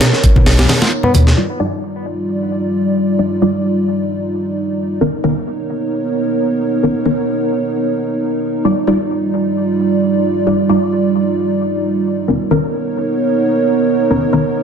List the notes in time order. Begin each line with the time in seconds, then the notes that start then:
Already playing: B3 D#4 A#4 C#5
0.01 B2, snare, closed hi-hat
0.13 snare
0.24 kick, closed hi-hat
0.36 B2, kick, high conga
0.46 B1, snare, open hi-hat
0.58 snare, open hi-hat, low conga
0.69 snare, open hi-hat, high conga
0.82 snare, open hi-hat
1.03 B3, low conga
1.14 D#2 B2, closed hi-hat, high conga
1.27 snare
1.37 G3 D#4 F4 D5
1.60 G3 D#4 F4 D5
3.19 G3 D#4 F4 D5
3.42 G3 D#4 F4 D5
5.01 D#3 B3 C#4 A#4 C#5
5.24 D#3 B3 C#4 A#4
6.83 D#3 B3 C#4 A#4
7.06 D#3 B3 C#4 A#4
8.65 G3 D#4 F4 D5
8.87 G3 D#4 F4 D5
10.47 G3 D#4 F4 D5
10.69 G3 D#4 F4 D5
12.28 D#3 B3 C#4 D#4 A#4 C#5
12.51 D#3 B3 C#4 A#4
14.10 D#3 B3 C#4 A#4
14.33 D#3 B3 C#4 A#4